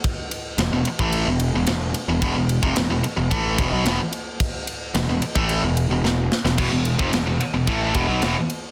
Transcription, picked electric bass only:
\new Staff \with { instrumentName = "Picked electric bass" } { \clef bass \time 4/4 \key c \lydian \tempo 4 = 110 r4 e,,16 e,,16 r16 a,,8 e,,8 e,,16 e,,8 r16 e,,16 | e,,16 e,,8 f,,16 e,,16 e,,16 r16 e,,16 a,,8 e,,16 b,,16 e,,16 r8. | r4 e,,16 e,,16 r16 a,,8 e,,8 e,,16 e,,8 r16 e,,16 | e,,16 e,,8 f,,16 e,,16 e,,16 r16 e,,16 a,,8 e,,16 b,,16 e,,16 r8. | }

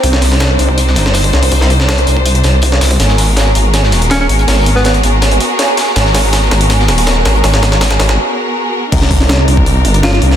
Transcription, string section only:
\new Staff \with { instrumentName = "String section" } { \time 4/4 \key c \minor \tempo 4 = 162 <c' d' ees' c''>1~ | <c' d' ees' c''>1 | <ces' ges' aes' bes'>1~ | <ces' ges' aes' bes'>1~ |
<ces' ges' aes' bes'>1~ | <ces' ges' aes' bes'>1 | <c' d' ees' bes'>1 | }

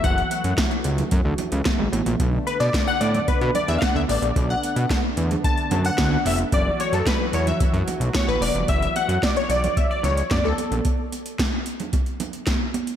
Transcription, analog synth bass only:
\new Staff \with { instrumentName = "Analog synth bass" } { \clef bass \time 4/4 \key fis \phrygian \tempo 4 = 111 fis,,8 r16 fis,16 r8 cis,8 fis,16 d,16 r16 cis,16 r16 gis,,16 a,,16 ais,,16 | b,,8 r16 b,16 r8 a,8 b,16 b,16 r16 e,16 r16 d,16 a,,16 ais,,16 | b,,8 r16 b,16 r8 e,8 r8 fis,8 d,8 eis,,8 | fis,,8 r16 fis,16 r8 e,8 fis,16 fis,16 r16 b,,16 r16 a,,16 e,,16 eis,,16 |
fis,,8 r16 fis,16 r8 b,,8 r8 cis,8 fis,16 d,16 r16 ais,,16 | r1 | }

